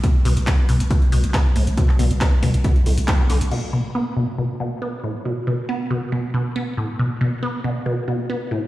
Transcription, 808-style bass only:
0.25 0.36 B1 loud
0.37 0.47 B1 medium
0.69 0.80 B1 loud
0.80 0.90 B1 medium
1.12 1.23 B1 loud
1.24 1.34 B1 medium
1.56 1.67 B1 loud
1.67 1.77 B1 medium
1.99 2.10 B1 loud
2.11 2.21 B1 medium
2.43 2.54 B1 loud
2.54 2.64 B1 medium
2.86 2.97 B1 loud
2.98 3.08 B1 medium
3.30 3.40 B1 medium
3.41 3.51 B1 medium

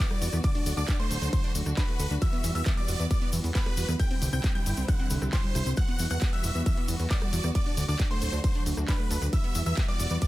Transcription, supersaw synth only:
0.00 0.38 D5 loud
0.44 0.73 D5 loud
0.77 0.96 D5 medium
0.99 1.28 C5 loud
1.33 1.52 C5 medium
1.77 2.15 B4 loud
2.22 2.50 E5 loud
2.55 2.74 E5 medium
2.77 3.06 D5 loud
3.11 3.30 D5 medium
3.55 3.93 B4 loud
4.00 4.28 G5 loud
4.33 4.52 G5 medium
4.55 4.84 G5 loud
4.88 5.07 F#5 medium
5.33 5.71 C5 loud
5.77 6.06 F#5 loud
6.11 6.30 F#5 loud
6.33 6.61 E5 loud
6.66 6.85 E5 medium
7.11 7.49 D5 loud
7.55 7.84 D5 loud
7.88 8.07 D5 medium
8.11 8.39 C5 loud
8.44 8.63 C5 medium
8.88 9.26 B4 loud
9.33 9.61 E5 loud
9.66 9.85 E5 medium
9.88 10.17 D5 loud
10.22 10.28 D5 medium

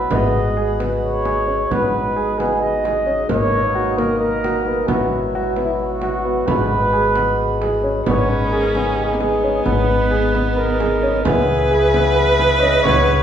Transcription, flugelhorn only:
0.00 0.13 B4 medium
0.12 0.80 D#5 medium
1.04 1.74 C#5 medium
1.72 2.40 B4 medium
2.38 2.63 G#4 medium
2.61 3.29 D#5 medium
3.30 3.99 C#5 medium
3.98 4.19 A#4 medium
4.19 4.89 A#4 medium
4.87 5.29 F#4 medium
5.64 5.71 E4 medium
5.81 6.49 F#4 medium
6.47 7.84 B4 loud
8.07 8.31 C#5 medium
8.29 8.54 B4 medium
8.52 8.76 A#4 medium
8.75 8.97 G#4 medium
8.98 9.67 G#4 medium
9.66 10.58 B4 medium
10.57 11.26 A#4 medium
11.25 12.17 G#4 medium
12.15 12.62 B4 medium
12.60 12.82 D#5 medium
12.83 13.23 C#5 medium

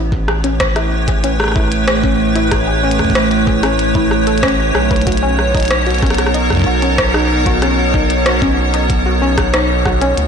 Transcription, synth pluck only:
0.28 0.37 G#4 medium
0.44 0.58 C#4 loud
0.76 0.85 E4 medium
1.08 1.17 G#4 medium
1.24 1.37 C#4 loud
1.56 1.65 E4 medium
1.88 1.97 G#4 medium
2.04 2.17 C#4 loud
2.35 2.45 E4 medium
2.67 2.77 G#4 medium
2.83 2.97 C#4 loud
3.15 3.24 E4 medium
3.47 3.56 G#4 medium
3.63 3.77 C#4 loud
3.95 4.04 E4 medium
4.27 4.41 A4 medium
4.43 4.48 C#4 loud
4.75 4.84 C#4 medium
4.91 4.96 B4 medium
5.07 5.16 F#4 medium
5.23 5.36 C#4 loud
5.55 5.64 D#4 medium
5.87 5.96 F#4 medium
6.02 6.16 C#4 loud
6.34 6.44 D#4 medium
6.66 6.75 F#4 medium
6.82 6.96 C#4 loud
7.14 7.23 D#4 medium
7.46 7.55 F#4 medium
7.62 7.76 C#4 loud
7.94 8.03 D#4 medium
8.26 8.35 F#4 medium
8.42 8.56 C#4 loud
8.74 8.83 D#4 medium
9.06 9.15 F#4 medium
9.22 9.35 C#4 loud
9.54 9.63 D#4 medium
9.86 9.95 F#4 medium
10.02 10.15 C#4 loud

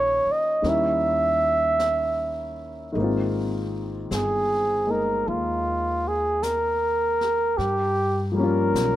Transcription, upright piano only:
0.00 0.61 D#3 soft
0.00 0.65 G#3 soft
0.00 0.63 A#3 soft
0.00 0.63 C#4 soft
0.00 0.67 F4 soft
0.62 2.91 D#3 soft
0.62 2.95 G3 soft
0.62 2.96 A#3 soft
0.62 2.96 C#4 soft
0.67 2.97 E4 soft
2.92 7.57 D#3 soft
2.92 4.85 G#3 soft
2.97 4.87 A#3 soft
2.97 7.61 C4 soft
3.03 7.62 F4 soft
4.87 7.58 G#3 soft
4.87 7.59 A#3 soft
4.87 7.60 D#4 soft
8.32 8.96 F3 soft
8.32 8.96 G3 soft
8.37 8.96 A#3 soft
8.37 8.96 C#4 soft
8.43 8.96 F4 medium

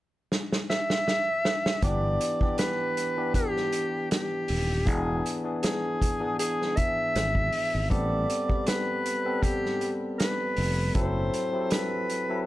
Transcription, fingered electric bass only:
1.83 2.16 G1 loud
4.50 4.88 D#1 medium
4.88 5.20 E1 medium
7.16 7.49 G#1 medium
7.75 7.89 G#1 medium
7.92 8.25 A1 medium
10.58 10.91 F1 medium
10.96 11.28 F#1 medium

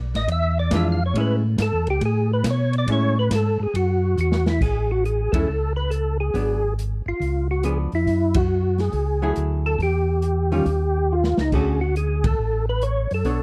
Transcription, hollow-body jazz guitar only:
0.73 0.98 E3 medium
0.73 0.99 G#3 medium
0.73 0.99 D4 medium
0.73 0.99 F4 medium
1.16 1.42 G#3 medium
1.16 1.42 C#4 medium
1.16 1.42 E4 medium
2.89 3.14 G#3 medium
2.89 3.15 C#4 medium
2.89 3.15 E4 medium
5.34 5.46 G#3 medium
5.34 5.47 C#4 medium
5.34 5.47 E4 medium
6.34 6.60 F#3 soft
6.34 6.60 B3 medium
6.34 6.61 D4 medium
7.64 7.90 F3 soft
7.64 7.90 B3 medium
7.64 7.90 D4 medium
9.22 9.77 F#3 medium
9.22 9.77 A3 medium
9.22 9.78 E4 medium
9.22 9.78 G#4 medium
10.52 10.65 D#3 medium
10.52 10.65 G3 medium
10.52 10.66 C#4 medium
10.52 10.65 F4 medium
11.53 11.79 D3 medium
11.53 11.79 A3 medium
11.53 11.80 C#4 medium
11.53 11.80 F#4 medium
13.25 13.43 B3 medium
13.25 13.43 D4 medium
13.25 13.43 A4 medium
13.25 13.43 C#5 medium

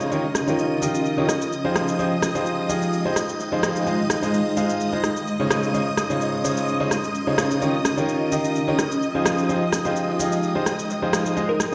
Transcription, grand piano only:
0.11 0.24 D#3 medium
0.11 0.24 D#4 medium
0.11 0.24 F4 medium
0.11 0.24 G4 medium
0.11 0.24 A#4 medium
0.11 0.24 C#5 loud
0.47 0.79 D#3 medium
0.47 0.79 D#4 medium
0.47 0.79 F4 medium
0.47 0.79 G4 medium
0.47 0.79 A#4 medium
0.47 0.79 C#5 medium
0.82 1.15 D#3 medium
0.82 1.15 D#4 medium
0.82 1.15 F4 medium
0.82 1.15 G4 medium
0.82 1.15 A#4 medium
0.82 1.15 D#5 loud
1.18 1.29 D#3 medium
1.18 1.29 D#4 medium
1.18 1.29 F4 medium
1.18 1.29 G4 medium
1.18 1.29 A#4 medium
1.18 1.29 C#5 medium
1.65 1.96 F3 medium
1.65 1.96 D#4 medium
1.65 1.96 F4 medium
1.65 1.96 G4 medium
1.65 1.96 G#4 medium
1.65 1.96 C5 loud
1.99 2.12 F3 medium
1.99 2.12 D#4 medium
1.99 2.12 F4 medium
1.99 2.12 G4 medium
1.99 2.12 G#4 medium
1.99 2.12 C5 loud
2.35 2.67 F3 medium
2.35 2.67 D#4 medium
2.35 2.67 F4 medium
2.35 2.67 G4 medium
2.35 2.67 G#4 medium
2.35 2.67 C5 medium
2.69 3.02 F3 medium
2.69 3.02 D#4 medium
2.69 3.02 F4 medium
2.69 3.02 G4 medium
2.69 3.02 G#4 medium
2.69 3.02 D#5 loud
3.05 3.17 F3 medium
3.05 3.17 D#4 medium
3.05 3.17 F4 medium
3.05 3.17 G4 medium
3.05 3.17 G#4 medium
3.05 3.17 C5 medium
3.52 3.84 F3 medium
3.52 3.84 D#4 medium
3.52 3.84 F4 medium
3.52 3.84 G4 medium
3.52 3.84 G#4 medium
3.52 3.84 C5 loud
3.87 3.99 G#3 medium
3.87 3.99 D#4 medium
3.87 3.99 F4 medium
3.87 3.99 G#4 medium
3.87 3.99 C5 medium
3.87 3.99 D#5 loud
4.22 4.54 G#3 medium
4.22 4.54 D#4 medium
4.22 4.54 F4 medium
4.22 4.54 G#4 medium
4.22 4.54 C5 medium
4.22 4.54 D#5 medium
4.57 4.90 G#3 medium
4.57 4.90 D#4 medium
4.57 4.90 F4 medium
4.57 4.90 G#4 medium
4.57 4.90 C5 medium
4.57 4.90 F5 loud
4.93 5.04 G#3 medium
4.93 5.04 D#4 medium
4.93 5.04 F4 medium
4.93 5.04 G#4 medium
4.93 5.04 C5 medium
4.93 5.04 D#5 loud
5.40 5.71 C#3 medium
5.40 5.71 D#4 medium
5.40 5.71 F4 medium
5.40 5.71 G#4 medium
5.40 5.71 C5 medium
5.40 5.71 C#5 loud
5.74 5.87 C#3 medium
5.74 5.87 D#4 medium
5.74 5.87 F4 medium
5.74 5.87 G#4 medium
5.74 5.87 C5 medium
5.74 5.87 C#5 loud
6.10 6.42 C#3 medium
6.10 6.42 D#4 medium
6.10 6.42 F4 medium
6.10 6.42 G#4 medium
6.10 6.42 C5 medium
6.10 6.42 C#5 medium
6.44 6.77 C#3 medium
6.44 6.77 D#4 medium
6.44 6.77 F4 medium
6.44 6.77 G#4 medium
6.44 6.77 C5 medium
6.44 6.77 C#5 loud
6.80 6.92 C#3 medium
6.80 6.92 D#4 medium
6.80 6.92 F4 medium
6.80 6.92 G#4 medium
6.80 6.92 C5 medium
6.80 6.92 C#5 medium
7.27 7.59 C#3 medium
7.27 7.59 D#4 medium
7.27 7.59 F4 medium
7.27 7.59 G#4 medium
7.27 7.59 C5 medium
7.27 7.59 C#5 loud
7.62 7.74 D#3 medium
7.62 7.74 D#4 medium
7.62 7.74 F4 medium
7.62 7.74 G4 medium
7.62 7.74 A#4 medium
7.62 7.74 C#5 loud
7.97 8.29 D#3 medium
7.97 8.29 D#4 medium
7.97 8.29 F4 medium
7.97 8.29 G4 medium
7.97 8.29 A#4 medium
7.97 8.29 C#5 medium
8.32 8.65 D#3 medium
8.32 8.65 D#4 medium
8.32 8.65 F4 medium
8.32 8.65 G4 medium
8.32 8.65 A#4 medium
8.32 8.65 D#5 loud
8.68 8.79 D#3 medium
8.68 8.79 D#4 medium
8.68 8.79 F4 medium
8.68 8.79 G4 medium
8.68 8.79 A#4 medium
8.68 8.79 C#5 loud
9.15 9.46 F3 medium
9.15 9.46 D#4 medium
9.15 9.46 F4 medium
9.15 9.46 G4 medium
9.15 9.46 G#4 medium
9.15 9.46 C5 loud
9.49 9.62 F3 medium
9.49 9.62 D#4 medium
9.49 9.62 F4 medium
9.49 9.62 G4 medium
9.49 9.62 G#4 medium
9.49 9.62 C5 loud
9.85 10.17 F3 medium
9.85 10.17 D#4 medium
9.85 10.17 F4 medium
9.85 10.17 G4 medium
9.85 10.17 G#4 medium
9.85 10.17 C5 medium
10.19 10.52 F3 medium
10.19 10.52 D#4 medium
10.19 10.52 F4 medium
10.19 10.52 G4 medium
10.19 10.52 G#4 medium
10.19 10.52 D#5 loud
10.55 10.67 F3 medium
10.55 10.67 D#4 medium
10.55 10.67 F4 medium
10.55 10.67 G4 medium
10.55 10.67 G#4 medium
10.55 10.67 C5 loud
11.02 11.34 F3 medium
11.02 11.34 D#4 medium
11.02 11.34 F4 medium
11.02 11.34 G4 medium
11.02 11.34 G#4 medium
11.02 11.34 C5 medium
11.37 11.49 G#3 medium
11.37 11.49 D#4 medium
11.37 11.49 F4 medium
11.37 11.49 G#4 medium
11.37 11.49 C5 medium
11.37 11.49 D#5 loud

